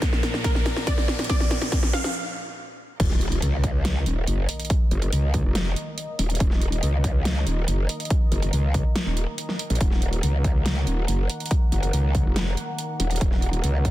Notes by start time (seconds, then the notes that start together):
Already playing: A#2 F3 D4 A#4, riser
0.02 kick, snare, closed hi-hat
0.13 snare
0.23 snare, closed hi-hat
0.34 snare
0.44 A#4, kick, snare, closed hi-hat
0.55 snare
0.66 snare, closed hi-hat
0.77 snare
0.87 D5, kick, snare, closed hi-hat
0.98 snare
1.08 snare
1.19 snare, closed hi-hat
1.24 closed hi-hat
1.29 D5, kick, snare, closed hi-hat
1.40 snare
1.51 snare, closed hi-hat
1.62 snare, closed hi-hat
1.72 kick, snare, closed hi-hat
1.83 snare
1.93 F5, snare, closed hi-hat
2.04 snare, closed hi-hat
3.00 D#1 D#3 A#3 A#4 D#5, kick, closed hi-hat, crash, impact
3.11 snare
3.21 closed hi-hat
3.32 closed hi-hat
3.42 C#2, closed hi-hat
3.64 kick, closed hi-hat
3.85 snare, closed hi-hat
4.06 D#1, closed hi-hat
4.27 F#1, closed hi-hat
4.49 open hi-hat
4.60 closed hi-hat
4.65 closed hi-hat
4.70 kick, closed hi-hat
4.91 F#1, closed hi-hat
5.02 closed hi-hat
5.13 C#2, closed hi-hat
5.34 kick, closed hi-hat
5.45 F1
5.55 snare, closed hi-hat
5.76 closed hi-hat
5.98 closed hi-hat
6.19 D#1, open hi-hat
6.30 closed hi-hat
6.35 closed hi-hat
6.40 D#1, kick, closed hi-hat
6.51 snare
6.61 closed hi-hat
6.72 closed hi-hat
6.83 C#2, closed hi-hat
7.04 kick, closed hi-hat
7.25 snare, closed hi-hat
7.47 D#1, closed hi-hat
7.68 F#1, closed hi-hat
7.89 open hi-hat
8.00 closed hi-hat
8.05 closed hi-hat
8.10 kick, closed hi-hat
8.32 F#1, closed hi-hat
8.43 closed hi-hat
8.53 C#2, closed hi-hat
8.74 kick, closed hi-hat
8.96 snare, closed hi-hat
9.06 D#1
9.17 closed hi-hat
9.38 closed hi-hat
9.49 snare
9.59 open hi-hat
9.70 A#1, closed hi-hat
9.75 closed hi-hat
9.81 D#1 F#5, kick, closed hi-hat
9.91 snare
10.02 closed hi-hat
10.13 closed hi-hat
10.23 C#2, closed hi-hat
10.44 kick, closed hi-hat
10.66 snare, closed hi-hat
10.87 D#1, closed hi-hat
11.08 F#1, closed hi-hat
11.30 open hi-hat
11.40 closed hi-hat
11.46 closed hi-hat
11.51 kick, closed hi-hat
11.72 F#1, closed hi-hat
11.83 closed hi-hat
11.93 C#2, closed hi-hat
12.15 kick, closed hi-hat
12.25 F1
12.36 snare, closed hi-hat
12.57 closed hi-hat
12.79 closed hi-hat
13.00 D#1, open hi-hat
13.11 closed hi-hat
13.16 closed hi-hat
13.21 D#1, kick, closed hi-hat
13.32 snare
13.42 closed hi-hat
13.53 closed hi-hat
13.64 C#2, closed hi-hat
13.85 kick, closed hi-hat